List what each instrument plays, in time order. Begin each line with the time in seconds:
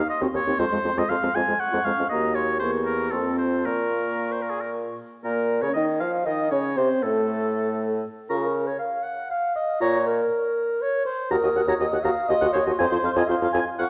0.09 oboe D#5, flute C6
0.21 bassoon D#2, french horn C4, clarinet F#4
0.33 bassoon D#2, french horn C4, clarinet C4, oboe C#5
0.47 bassoon D#2, french horn C4, clarinet D#4
0.58 bassoon F2, french horn G#3, clarinet F4, oboe C5
0.71 bassoon F2, french horn G#3, clarinet G#3
0.84 bassoon F2, french horn G#3, clarinet C4
0.97 bassoon F2, french horn G#3, clarinet F4, oboe D#5
1.09 bassoon F2, french horn G#3, clarinet G#3, oboe F5
1.22 bassoon F2, french horn G#3, clarinet C4
1.35 bassoon F2, french horn G#3, clarinet F4, oboe G#5
1.48 bassoon F2, clarinet G#3, french horn G#3
1.60 oboe F#5, flute C#6
1.72 bassoon F2, french horn G#3, clarinet F4
1.84 bassoon F2, clarinet G#3, french horn G#3, oboe F5
1.97 bassoon F2, french horn G#3, clarinet C#4
2.09 bassoon D#2, french horn A#3, clarinet F#4, oboe D#5, flute A#5
2.35 oboe C#5, flute C6
2.59 bassoon E2, french horn A#3, clarinet G4, oboe C5, flute C#6
2.85 oboe A#4
3.12 bassoon F2, french horn C4, clarinet F4, oboe A4, flute C6
3.38 oboe C5
3.65 bassoon A#2, french horn A#3, clarinet F4, oboe A#4, flute C#6
4.32 oboe C5
4.42 oboe A#4
4.50 oboe G#4
4.61 oboe A#4
5.24 bassoon A#2, french horn A#3, oboe A#4, flute A#4, clarinet A#4
5.62 bassoon C#3, french horn C#4, oboe C#5, flute C#5, clarinet C#5
5.74 bassoon D#3, french horn D#4, oboe D#5, flute D#5, clarinet D#5
6.00 bassoon F3, french horn F4, flute F5, oboe F5, clarinet F5
6.25 bassoon D#3, french horn D#4, flute D#5, oboe D#5, clarinet D#5
6.51 bassoon C#3, french horn C#4, oboe C#5, clarinet C#5, flute C#5
6.76 bassoon C3, french horn C4, clarinet C5, flute C5, oboe C5
7.03 bassoon A2, french horn A3, clarinet A4, oboe A4, flute A4
8.29 bassoon C#3, french horn F4, clarinet A#4, oboe A#5, flute C#6
8.36 clarinet G#4
8.43 clarinet A#4
8.67 clarinet C#5
8.79 clarinet F5
9.03 clarinet F#5
9.30 clarinet F5
9.56 clarinet D#5
9.81 bassoon A#2, french horn F4, clarinet C#5, oboe A#5, flute C#6
10.06 clarinet A#4
10.82 clarinet C#5
11.05 clarinet C5
11.31 bassoon D#2, french horn F#4, clarinet A#4, oboe A#5, flute D#6
11.43 bassoon D#2, french horn F#4, oboe D#5
11.55 bassoon D#2, french horn F#4, oboe F#5
11.67 bassoon D#2, french horn F#4, clarinet C#5, oboe A#5
11.80 bassoon D#2, french horn F#4, oboe D#5, clarinet D#5
11.92 bassoon D#2, french horn F#4, oboe F#5
12.03 bassoon D#2, french horn F#4, clarinet F5, oboe A#5
12.28 bassoon D#2, french horn F#4, clarinet D#5, oboe D#5, flute C6
12.41 bassoon D#2, french horn F#4, oboe F#5
12.53 bassoon D#2, french horn F#4, oboe C5, clarinet C#5
12.66 bassoon D#2, french horn F#4, oboe D#5
12.79 bassoon F2, french horn F4, clarinet C5, oboe G#5
12.91 bassoon F2, french horn F4, oboe C5
13.03 bassoon F2, french horn F4, oboe F5
13.16 bassoon F2, french horn F4, clarinet D#5, oboe G#5
13.28 bassoon F2, french horn F4, oboe C5, clarinet F5
13.42 bassoon F2, french horn F4, oboe F5
13.52 bassoon F2, french horn F4, clarinet G#5, oboe G#5
13.78 bassoon F2, french horn F4, oboe F5, clarinet F#5, flute C#6